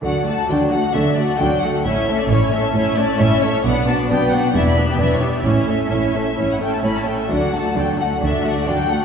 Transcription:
<<
  \new Staff \with { instrumentName = "Violin section" } { \time 4/4 \key d \major \tempo 4 = 132 fis''8 a''8 g''8 fis''8 e''8 d''8 g''8 fis''8 | e''16 e''8 d''16 cis''8 e''8 e''8 d''8 e''8 cis''8 | fis''8 a''8 g''8 fis''8 e''16 b''8 g''16 e''16 cis''8 d''16 | e''2~ e''16 fis''16 g''16 a''16 b''16 a''16 g''16 e''16 |
fis''8 a''8 g''8 fis''8 e''8 d''8 g''8 fis''8 | }
  \new Staff \with { instrumentName = "Violin section" } { \time 4/4 \key d \major <fis' d''>8 <a' fis''>8 <fis' d''>8 <a' fis''>8 <fis' d''>8 <a' fis''>8 <fis' d''>8 <a' fis''>8 | cis''8 <a' e''>8 cis''8 <a' e''>8 cis''8 <a' e''>8 cis''8 <a' e''>8 | <b' d''>8 <fis' b'>8 <b' d''>8 <fis' b'>8 <b' d''>8 <g' e''>8 <b' d''>8 <g' e''>8 | cis''8 <a' e''>8 cis''8 <a' e''>8 cis''8 <a' e''>8 cis''8 <a' e''>8 |
<fis' d''>8 <a' fis''>8 <fis' d''>8 <a' fis''>8 <fis' d''>8 <a' fis''>8 <fis' d''>8 <a' fis''>8 | }
  \new Staff \with { instrumentName = "Viola section" } { \time 4/4 \key d \major <fis d'>8 <a fis'>8 <fis d'>8 <a fis'>8 <fis d'>8 <a fis'>8 <fis d'>8 <a fis'>8 | <cis' e'>8 <a cis'>8 <cis' e'>8 <a cis'>8 <cis' e'>8 <a cis'>8 <cis' e'>8 <a cis'>8 | <b d'>8 <b d'>8 <b d'>8 <b d'>8 <d' e'>8 <b d'>8 <d' e'>8 <b d'>8 | <cis' e'>8 <a cis'>8 <cis' e'>8 <a cis'>8 <cis' e'>8 <a cis'>8 <cis' e'>8 <a cis'>8 |
<fis d'>8 <a fis'>8 <fis d'>8 <a fis'>8 <fis d'>8 <a fis'>8 <fis d'>8 <a fis'>8 | }
  \new Staff \with { instrumentName = "Cello section" } { \clef bass \time 4/4 \key d \major d4 d4 d4 d4 | a,4 a,4 a,4 a,4 | b,4 b,4 e,4 e,4 | a,4 a,4 a,4 a,4 |
d4 d4 d4 d4 | }
  \new Staff \with { instrumentName = "Double bass section" } { \clef bass \time 4/4 \key d \major d,4 d,4 d,4 d,4 | a,,4 a,,4 a,,4 a,,4 | b,,4 b,,4 e,,4 e,,4 | a,,4 a,,4 a,,4 a,,4 |
d,4 d,4 d,4 d,4 | }
>>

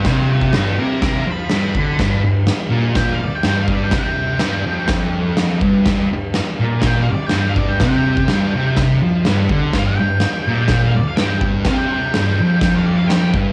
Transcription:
<<
  \new Staff \with { instrumentName = "Lead electric guitar" } { \time 4/4 \key f \lydian \tempo 4 = 124 <b' g''>8 <d'' bes''>8 <d'' bes''>8 <f'' d'''>8 <f'' d'''>8 b''4.~ | b''4. r8 g''16 f''16 d''16 g''16 g''16 f''16 d''16 g''16 | g''2 r2 | r2 g''16 f''16 d''16 g''16 g''16 f''16 d''16 g''16 |
g''2 r2 | f''16 g''2 f''16 d''16 f''16 g''8 r8 | f''16 g''2 f''16 d''16 f''16 g''8 r8 | }
  \new Staff \with { instrumentName = "Distorted electric guitar" } { \clef bass \time 4/4 \key f \lydian c4 g,8 c4 f8 g,8 d8 | g,8 g,8 r8 bes,4 r8 g,4 | c4 g,8 f,2 g,8 | g,8 g,8 r8 bes,4 r8 g,4 |
c4 g,8 c4 f8 g,8 d8 | g,8 g,8 r8 bes,4 r8 g,4 | c4 g,8 f,2 g,8 | }
  \new DrumStaff \with { instrumentName = "Drums" } \drummode { \time 4/4 <cymc bd sn>8. bd16 <cymc sn>4 <cymc bd sn>4 <cymc sn>8 bd8 | <cymc bd sn>4 <cymc sn>4 <cymc bd sn>4 <cymc sn>8 bd8 | <cymc bd sn>4 <cymc sn>4 <cymc bd sn>4 <cymc sn>8 bd8 | <cymc bd sn>4 <cymc sn>4 <cymc bd sn>4 <cymc sn>8 bd8 |
<cymc bd sn>8. bd16 <cymc sn>4 <cymc bd sn>4 <cymc sn>8 bd8 | <cymc bd sn>4 <cymc sn>4 <cymc bd sn>4 <cymc sn>8 bd8 | <cymc bd sn>4 <cymc sn>4 <cymc bd sn>4 <cymc sn>8 bd8 | }
>>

